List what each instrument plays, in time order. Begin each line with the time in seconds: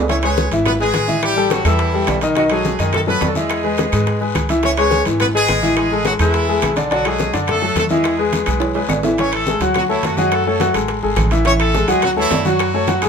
Already playing: upright bass C#2
0.08 grand piano E3 E4 E5, horn section C#4 C#5, high bongo, high conga, high timbale, long guiro
0.23 grand piano G#3 G#4 B4, horn section C#4 C#5, high bongo, high conga, high timbale, claves
0.37 high bongo, high conga, short guiro
0.51 upright bass G#1, grand piano E3 E4 E5, high bongo, high conga, high timbale, short guiro
0.65 horn section B3 B4, high bongo, high conga, low conga, high timbale, long guiro, claves
0.80 grand piano G#3 G#4 B4, horn section G#3 G#4, high bongo, high conga
0.94 upright bass A1, high bongo, low bongo, high conga, high timbale, short guiro
1.08 grand piano E3 E4 E5, high conga, short guiro
1.22 horn section G3 G4, high bongo, high conga, high timbale, long guiro, claves
1.36 grand piano G3 G4 A4, high bongo, high conga
1.50 horn section F#3 F#4, high bongo, high conga, high timbale, short guiro
1.65 upright bass E2, horn section E3 E4, grand piano G3 G4 A4, high conga, high timbale, short guiro, claves
1.78 high bongo, high conga, high timbale, long guiro
1.94 grand piano G3 G4 A4, high bongo, high conga
2.07 upright bass B1, high bongo, low bongo, high conga, high timbale, low timbale, short guiro, claves
2.21 grand piano D#3 D#4 D#5, high bongo, high conga, high timbale, short guiro
2.35 grand piano D#3 D#4 D#5, horn section F#3 F#4, high bongo, high conga, high timbale, long guiro
2.50 grand piano F#3 F#4 A4, horn section G#3 G#4, high bongo, high conga, high timbale, claves
2.64 high bongo, high conga, short guiro
2.79 upright bass F#2, grand piano D#3 D#4 D#5, high bongo, high conga, high timbale, short guiro
2.92 horn section A3 A4, high bongo, high conga, low conga, high timbale, long guiro, claves
3.07 grand piano F#3 F#4 A4, horn section B3 B4, high bongo, high conga, low conga
3.21 upright bass E2, high bongo, low bongo, high conga, high timbale, low timbale, short guiro
3.28 horn section A4
3.35 grand piano E3 E4 E5, horn section G#3 G#4, high conga, short guiro
3.49 high bongo, high conga, high timbale, long guiro, claves
3.64 grand piano G#3 G#4 B4, high bongo, high conga
3.77 high bongo, high conga, high timbale, short guiro
3.92 upright bass G#2, grand piano G#3 G#4 B4, high conga, high timbale, short guiro, claves
4.06 high bongo, high conga, high timbale, long guiro
4.21 grand piano G#3 G#4 B4, high bongo, high conga
4.35 upright bass C#2, high bongo, low bongo, high conga, high timbale, short guiro, claves
4.49 grand piano E3 E4 E5, high bongo, high conga, high timbale, short guiro
4.63 grand piano E3 E4 E5, horn section C#4 C#5, high bongo, high conga, high timbale, long guiro
4.77 grand piano G#3 G#4 B4, horn section C#4 C#5, high bongo, high conga, high timbale, claves
4.91 high bongo, high conga, short guiro
5.05 upright bass G#1, grand piano E3 E4 E5, high bongo, high conga, high timbale, short guiro
5.20 horn section B3 B4, high bongo, high conga, low conga, high timbale, claves
5.35 grand piano G#3 G#4 B4, horn section G#3 G#4, high bongo, high conga
5.48 upright bass A1, high bongo, low bongo, high conga, high timbale, short guiro
5.62 grand piano E3 E4 E5, high conga, short guiro
5.77 horn section G#3 G#4, high bongo, high conga, high timbale, long guiro, claves
5.91 grand piano G#3 G#4 A4, high bongo, high conga
6.05 horn section F#3 F#4, high bongo, high conga, high timbale, short guiro
6.19 upright bass E2, horn section E3 E4, grand piano G#3 G#4 A4, high conga, high timbale, short guiro, claves
6.34 high bongo, high conga, high timbale, long guiro
6.48 grand piano G#3 G#4 A4, high bongo, high conga
6.62 upright bass B1, high bongo, low bongo, high conga, high timbale, short guiro, claves
6.76 grand piano D3 D4 D5, high bongo, high conga, high timbale, short guiro
6.90 grand piano D3 D4 D5, horn section F#3 F#4, high bongo, high conga, high timbale, long guiro
7.05 grand piano F#3 F#4 A4, horn section G#3 G#4, high bongo, high conga, high timbale, claves
7.19 high bongo, high conga, short guiro
7.33 upright bass F#2, grand piano D3 D4 D5, high bongo, high conga, high timbale, short guiro
7.47 horn section A3 A4, high bongo, high conga, low conga, high timbale, long guiro, claves
7.62 grand piano F#3 F#4 A4, high bongo, high conga
7.75 upright bass E2, horn section A3 A4, high bongo, low bongo, high conga, high timbale, short guiro
7.89 grand piano E3 E4 E5, horn section G#3 G#4, high conga, short guiro
8.04 high bongo, high conga, high timbale, long guiro, claves
8.18 grand piano G#3 G#4 B4, high bongo, high conga
8.33 high bongo, high conga, high timbale, short guiro
8.46 upright bass B1, grand piano G#3 G#4 B4, high conga, high timbale, short guiro, claves
8.60 high bongo, high conga, high timbale, long guiro
8.75 grand piano G#3 G#4 B4, high bongo, high conga, high timbale
8.89 upright bass A1, high bongo, low bongo, high conga, low timbale, short guiro, claves
9.03 grand piano E3 E4 E5, high bongo, low timbale, short guiro
9.18 grand piano E3 E4 E5, horn section C#4 C#5, high bongo, high conga, high timbale, long guiro
9.32 horn section A3 A4, high bongo, high conga, high timbale, claves
9.46 grand piano G#3 G#4 A4, high bongo, high conga, short guiro
9.60 upright bass D2, grand piano F#3 F#4 F#5, high bongo, high conga, high timbale, short guiro
9.74 horn section F#3 F#4, high bongo, high conga, low conga, high timbale, long guiro, claves
9.89 horn section E3 E4, grand piano A3 A4 C#5, high bongo, high conga
10.03 upright bass F#2, horn section F#3 F#4, high bongo, low bongo, high conga, high timbale, short guiro
10.17 grand piano F#3 F#4 F#5, horn section G#3 G#4, high conga, short guiro
10.31 horn section A3 A4, high bongo, high conga, high timbale, long guiro, claves
10.46 grand piano A3 A4 C#5, horn section A3 A4, high bongo, high conga
10.60 grand piano F#3 F#4 F#5, high bongo, high conga, high timbale, short guiro
10.74 upright bass A1, grand piano G#3 G#4 A4, high conga, high timbale, short guiro, claves
10.88 high bongo, high conga, high timbale, long guiro
11.03 upright bass G#1, grand piano G#3 G#4 A4, high bongo, high conga
11.16 upright bass A1, high bongo, low bongo, high conga, high timbale, short guiro, claves
11.31 grand piano E3 E4 E5, high bongo, high timbale, short guiro
11.45 grand piano E3 E4 E5, horn section C#4 C#5, high bongo, high timbale, long guiro
11.59 horn section A3 A4, high bongo, high conga, high timbale, claves
11.74 grand piano G#3 G#4 A4, high bongo, high conga, short guiro
11.88 upright bass D2, grand piano F#3 F#4 F#5, horn section G#3 G#4, high bongo, high conga, high timbale, short guiro
12.02 horn section F#3 F#4, high bongo, high conga, low conga, high timbale, long guiro, claves
12.17 horn section E3 E4, grand piano A3 A4 C#5, high bongo, high conga
12.31 upright bass F#2, high bongo, low bongo, high conga, high timbale, low timbale, short guiro
12.45 grand piano F#3 F#4 F#5, horn section F#3 F#4, high conga, short guiro
12.59 high bongo, high conga, high timbale, long guiro, claves
12.74 grand piano A3 A4 C#5, high bongo, high conga
12.87 grand piano F#3 F#4 F#5, high bongo, high conga, high timbale, short guiro
13.02 upright bass A1, grand piano G#3 G#4 A4, high conga, high timbale, short guiro, claves